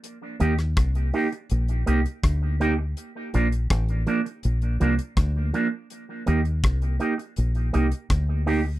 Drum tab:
HH |x-xxxxoxxxxxx-x-|x-xxxxxxxxxxx-x-|x-xxxxxxxxxxx-o-|
SD |---rr-------r---|----r-------r---|----r-------r---|
BD |----o-------o---|----o-------o---|----o-------o---|